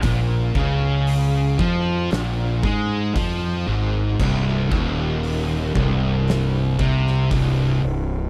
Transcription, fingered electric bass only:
X:1
M:4/4
L:1/8
Q:1/4=58
K:Cphr
V:1 name="Fingered electric bass" clef=bass
B,,, D,,2 F,, B,,, A,, F,, A,,, | C,,, E,,,2 C,,,2 C,, C,,, C,,, |]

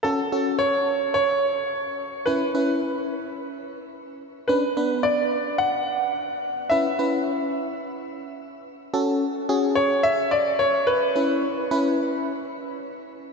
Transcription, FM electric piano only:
X:1
M:4/4
L:1/8
Q:1/4=108
K:F#m
V:1 name="FM electric piano"
[CFA] [CFA]2 z4 z | [CEB] [CEB]2 z4 z | [CDB] [B,DB]2 z4 z | [CEB] [CEB]2 z4 z |
[CFA] z [CFG]2 z4 | [CEB] z [CEB]2 z4 |]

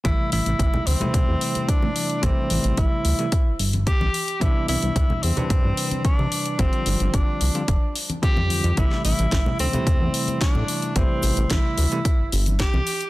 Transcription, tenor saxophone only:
X:1
M:4/4
L:1/8
Q:1/4=110
K:Am
V:1 name="Tenor saxophone"
E E2 C3 D2 | C2 E3 z G2 | E E2 C3 D2 | C2 D3 z G2 |
E E2 C3 D2 | C2 E3 z G2 |]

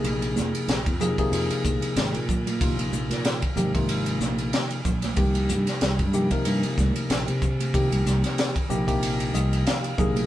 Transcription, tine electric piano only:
X:1
M:4/4
L:1/16
Q:"Swing 16ths" 1/4=94
K:Cm
V:1 name="Tine electric piano"
z16 | z16 | z16 | z8 z2 e2 f4 |]
V:2 name="Tine electric piano"
[C,F,B,EA]4- [C,F,B,EA] z [C,F,B,EA] [C,F,B,EA]6- [C,F,B,EA] z2 | [C,F,B,EF]4- [C,F,B,EF] z [C,F,B,EG] [C,F,B,EF]6- [C,F,B,EF] z2 | [C,F,B,EG]4- [C,F,B,EG] z [C,F,B,EG] [C,F,B,EB]6- [C,F,B,EB] z2 | [C,F,B,EG]4- [C,F,B,EG] z [C,F,B,EG] [C,F,B,EG]6- [C,F,B,EG] [C,F,B,EA]2 |]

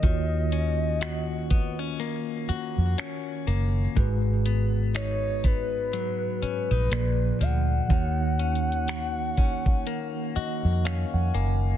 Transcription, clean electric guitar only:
X:1
M:4/4
L:1/16
Q:"Swing 16ths" 1/4=61
K:D#m
V:1 name="Clean electric guitar"
D,2 C2 F2 B, C A,2 F2 C2 A,2 | G,,2 B,2 D2 B,2 F,2 C D A,,2 E,2 | D,2 C2 F2 C2 A,2 F2 C2 A,2 |]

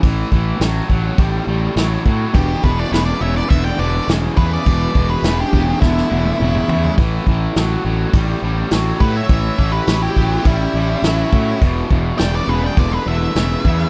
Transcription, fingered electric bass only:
X:1
M:4/4
L:1/8
Q:1/4=104
K:A
V:1 name="Fingered electric bass" clef=bass
A,,, A,,, A,,, A,,, A,,, A,,, A,,, A,, | E,,, E,,, E,,, E,,, E,,, E,,, E,,, E,, | E,,, E,,, E,,, E,,, E,,, E,,, E,,, E,, | A,,, A,,, A,,, A,,, A,,, A,,, A,,, A,, |
A,,, A,,, A,,, A,,, A,,, A,,, A,,, A,, | E,,, E,,, E,,, E,,, E,,, E,,, E,,, E,, |]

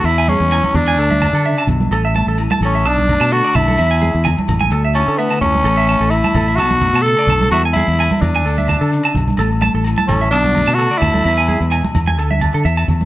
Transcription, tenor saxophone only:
X:1
M:4/4
L:1/8
Q:"Swing 16ths" 1/4=129
K:A
V:1 name="Tenor saxophone"
E C2 D4 z | z3 C D2 F E- | E2 z3 C B, C- | C2 E2 F2 A2 |
F E2 D4 z | z3 C D2 F E- | E2 z6 |]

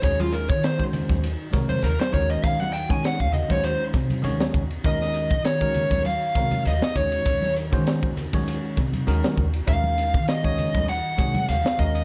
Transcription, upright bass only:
X:1
M:4/4
L:1/16
Q:"Swing 16ths" 1/4=100
K:Ebdor
V:1 name="Upright bass" clef=bass
E,,3 E,2 E,,2 E,,2 z C,2 E,, z E,,2 | E,,3 E,2 E,,2 E,,2 z C,2 E,, z E,,2 | E,,3 E,2 E,,2 E,,2 z C,2 E,, z E,,2 | E,,3 E,2 E,,2 E,,2 z C,2 E,, z E,,2 |
E,,3 E,2 E,,2 E,,2 z C,2 E,, z E,,2 |]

